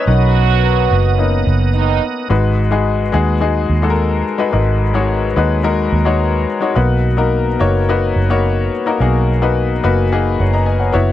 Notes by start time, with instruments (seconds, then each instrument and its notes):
Already playing: upright piano B3 B4, tonewheel organ B3
0.07 fingered electric bass B1, french horn section F#3 F#4, upright piano C#4 D#4 A#4, tonewheel organ F#5 A#5 D#6
0.91 fingered electric bass F#1
1.18 upright piano A#3 C#4 D#4
1.47 fingered electric bass F#1
1.74 french horn section D#3 D#4
2.29 fingered electric bass G#1, upright piano G#2 G#3 D#4 F#4 B4
2.71 upright piano G#3 D#4 F#4 G#4
3.12 fingered electric bass D#2, upright piano G#3 D#4 F#4 G#4
3.40 upright piano G#3 D#4 F#4 G#4
3.69 fingered electric bass D#2
3.82 upright piano G#3 D#4 F#4 A4
3.90 upright piano A#4
4.38 upright piano G#3 D#4 F#4 B4
4.52 fingered electric bass G#1, upright piano G#2 G#3 D#4 F#4 A#4
4.94 upright piano G#3 D#4 F#4 C#5
5.36 fingered electric bass D#2, upright piano G#3 D#4 F#4 B4
5.63 upright piano G#3 D#4 F#4 A#4
5.92 fingered electric bass D#2
6.05 upright piano G#3 D#4 F#4 C#5
6.61 upright piano G#3 D#4 F#4 C#5
6.75 fingered electric bass B1, upright piano B2 A#3 D#4 F#4 B4
7.17 upright piano A#3 D#4 F#4 A#4
7.59 fingered electric bass F#1, upright piano A#3 D#4 F#4 C#5
7.89 upright piano A#3 D#4 F#4 B4
8.16 fingered electric bass F#1
8.30 upright piano A#3 D#4 F#4 C#5
8.86 upright piano A#3 D#4 F#4 A#4
9.00 fingered electric bass B1, upright piano B2 A#3 D#4 F#4 G#4
9.42 upright piano A#3 D#4 F#4 B4
9.83 fingered electric bass F#1, upright piano A#3 D#4 F#4 B4
10.12 upright piano A#3 D#4 F#4 G#4
10.40 fingered electric bass F#1, upright piano C#5 F#5
10.53 upright piano D#5 A#5
10.66 upright piano D#5 G#5
10.80 upright piano C#5 F#5
10.92 fingered electric bass F#1, upright piano B3 E4 F#4 C#5